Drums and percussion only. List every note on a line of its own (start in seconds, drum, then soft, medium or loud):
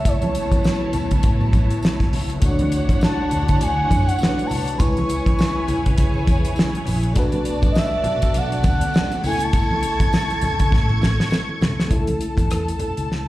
0.05 kick loud
0.05 closed hi-hat loud
0.05 tambourine soft
0.22 closed hi-hat soft
0.22 muted conga soft
0.22 high conga medium
0.35 closed hi-hat medium
0.35 tambourine soft
0.52 kick medium
0.52 closed hi-hat medium
0.52 tambourine soft
0.52 high conga medium
0.64 snare medium
0.64 tambourine medium
0.82 muted conga soft
0.93 closed hi-hat medium
0.93 tambourine soft
0.93 low conga medium
1.11 kick medium
1.11 closed hi-hat medium
1.11 tambourine soft
1.23 kick medium
1.23 closed hi-hat medium
1.23 tambourine soft
1.23 muted conga soft
1.40 tambourine soft
1.40 muted conga soft
1.53 kick medium
1.53 closed hi-hat medium
1.53 tambourine soft
1.53 high conga medium
1.71 closed hi-hat soft
1.71 tambourine soft
1.82 snare loud
1.82 tambourine medium
2.00 kick medium
2.00 snare soft
2.00 closed hi-hat soft
2.13 open hi-hat medium
2.13 tambourine soft
2.13 low conga medium
2.30 closed hi-hat soft
2.42 kick loud
2.42 closed hi-hat medium
2.42 tambourine soft
2.59 closed hi-hat soft
2.59 high conga medium
2.72 closed hi-hat medium
2.72 tambourine soft
2.89 kick medium
2.89 closed hi-hat medium
2.89 tambourine soft
2.89 high conga medium
3.01 snare loud
3.01 tambourine medium
3.31 closed hi-hat soft
3.31 tambourine soft
3.31 low conga medium
3.48 kick medium
3.48 closed hi-hat medium
3.48 tambourine soft
3.61 closed hi-hat medium
3.61 tambourine soft
3.61 muted conga soft
3.90 kick medium
3.90 closed hi-hat medium
3.90 tambourine soft
3.90 high conga medium
4.07 closed hi-hat soft
4.07 tambourine soft
4.19 tambourine medium
4.19 muted conga soft
4.23 snare loud
4.38 closed hi-hat soft
4.38 muted conga soft
4.49 open hi-hat medium
4.49 tambourine soft
4.49 low conga medium
4.68 closed hi-hat soft
4.79 kick loud
4.79 closed hi-hat medium
4.79 tambourine medium
4.79 muted conga soft
4.97 closed hi-hat soft
4.97 muted conga soft
4.97 high conga medium
5.09 closed hi-hat medium
5.09 tambourine soft
5.26 kick medium
5.26 closed hi-hat medium
5.26 high conga medium
5.39 snare medium
5.39 tambourine medium
5.39 muted conga soft
5.68 closed hi-hat medium
5.68 tambourine soft
5.68 low conga medium
5.86 kick medium
5.86 closed hi-hat soft
5.98 kick medium
5.98 closed hi-hat medium
5.98 tambourine soft
5.98 muted conga soft
6.14 tambourine soft
6.14 muted conga soft
6.26 kick medium
6.26 closed hi-hat medium
6.26 tambourine soft
6.26 high conga medium
6.45 closed hi-hat medium
6.45 tambourine soft
6.56 snare loud
6.56 tambourine medium
6.73 closed hi-hat soft
6.73 muted conga soft
6.85 open hi-hat medium
6.85 tambourine soft
6.85 low conga medium
7.03 closed hi-hat soft
7.16 kick loud
7.16 closed hi-hat medium
7.16 tambourine medium
7.32 closed hi-hat soft
7.32 muted conga soft
7.32 high conga medium
7.45 closed hi-hat medium
7.45 tambourine soft
7.62 kick medium
7.62 closed hi-hat soft
7.62 tambourine soft
7.62 high conga medium
7.74 snare medium
7.74 tambourine medium
7.74 muted conga soft
7.92 muted conga soft
8.04 closed hi-hat soft
8.04 tambourine soft
8.04 low conga medium
8.22 kick medium
8.22 closed hi-hat medium
8.22 tambourine soft
8.34 closed hi-hat medium
8.34 tambourine soft
8.51 closed hi-hat soft
8.51 tambourine soft
8.51 muted conga soft
8.63 kick medium
8.63 closed hi-hat medium
8.63 tambourine soft
8.63 high conga medium
8.81 closed hi-hat soft
8.81 tambourine soft
8.94 snare loud
8.94 tambourine medium
9.11 closed hi-hat soft
9.11 muted conga soft
9.24 open hi-hat medium
9.24 tambourine medium
9.24 low conga medium
9.40 closed hi-hat medium
9.53 kick loud
9.53 closed hi-hat medium
9.53 tambourine soft
9.53 muted conga soft
9.71 muted conga soft
9.71 high conga medium
9.83 closed hi-hat medium
9.83 tambourine soft
10.00 kick medium
10.00 closed hi-hat soft
10.00 tambourine soft
10.00 high conga medium
10.13 snare medium
10.13 tambourine medium
10.30 closed hi-hat soft
10.30 muted conga soft
10.41 closed hi-hat medium
10.41 tambourine soft
10.41 high conga soft
10.41 low conga medium
10.59 kick medium
10.59 closed hi-hat medium
10.59 tambourine soft
10.72 kick medium
10.72 snare medium
10.72 tambourine soft
10.89 tambourine soft
10.89 muted conga soft
11.01 snare medium
11.01 tambourine soft
11.01 high conga medium
11.20 snare medium
11.31 snare medium
11.31 tambourine medium
11.49 muted conga soft
11.61 snare loud
11.61 tambourine soft
11.61 low conga medium
11.80 snare medium
11.91 kick loud
11.91 closed hi-hat medium
11.91 muted conga soft
12.07 closed hi-hat soft
12.07 high conga medium
12.21 closed hi-hat medium
12.37 kick medium
12.37 closed hi-hat soft
12.37 high conga medium
12.50 cross-stick medium
12.50 closed hi-hat medium
12.50 muted conga soft
12.68 closed hi-hat soft
12.79 closed hi-hat soft
12.79 low conga medium
12.97 closed hi-hat soft
13.12 snare soft